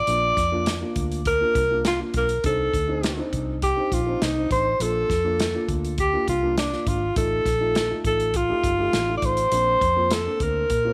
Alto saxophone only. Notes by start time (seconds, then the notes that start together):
Already playing: D5
1.27 A#4
1.87 F4
2.17 A#4
2.46 A4
3.63 G4
3.93 F4
4.23 D#4
4.52 C5
4.82 A4
6.00 G4
6.29 F4
6.58 D4
6.88 F4
7.18 A4
8.07 A4
8.36 F4
9.17 D5
9.25 C5
10.13 A4
10.43 A#4